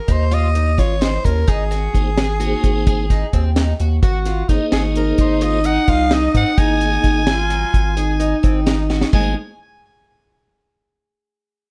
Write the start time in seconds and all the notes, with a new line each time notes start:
Already playing: A#4
0.08 D#2 D#4 C5, kick, closed hi-hat
0.31 F4 D#5, closed hi-hat
0.55 D#4, closed hi-hat
0.78 G#1 F4 C#5, kick, snare, closed hi-hat
1.01 D#4 C5, snare, closed hi-hat
1.24 D#2 C#4 A#4, kick, closed hi-hat
1.47 G#1 D#4 G#4, kick, closed hi-hat
1.71 F#4, snare, closed hi-hat
1.93 G#1 A#3 D#4 G#4 C5, kick, closed hi-hat
2.18 G#4, snare, closed hi-hat
2.40 A#3 D#4 F#4 G#4 C5, closed hi-hat
2.64 G#1, kick, closed hi-hat
2.87 G#4, kick, closed hi-hat
3.10 D#4, kick, snare, closed hi-hat
3.33 D#2 C4, kick, closed hi-hat
3.56 D#4, snare, closed hi-hat
3.80 D#2 F#4, closed hi-hat
4.03 G#1 F#4, kick, closed hi-hat
4.25 F4, snare, closed hi-hat
4.48 G#1 A#3 D#4 G#4 C5, kick, snare, closed hi-hat
4.72 G#1 F#4 G#4, snare, closed hi-hat
4.94 A#3 D#4 G#4 A#4 C5, closed hi-hat
5.18 G#1 D#4 C5, kick, closed hi-hat
5.41 F4 D#5, closed hi-hat
5.64 D#4 F#5, closed hi-hat
5.88 C2 F4 F5, kick, closed hi-hat
6.11 D#4 D#5, snare, closed hi-hat
6.34 G#2 C4 F#5, kick, closed hi-hat
6.57 G#1 A#3 D#4 G#4 D#5 G#5, kick, closed hi-hat
6.81 F#4, closed hi-hat
7.04 G#1, kick, snare, closed hi-hat
7.27 F4 G#4, snare, closed hi-hat
7.50 F#3, closed hi-hat
7.74 G#1, kick, closed hi-hat
7.97 D#4 G#4, closed hi-hat
8.20 D#4, closed hi-hat
8.43 G#1 C4, kick, closed hi-hat
8.66 D#4, snare, closed hi-hat
8.90 F#4, snare
9.01 snare
9.13 G#1 G#3 A#3 D#4 G#4 C5 G#5, kick, crash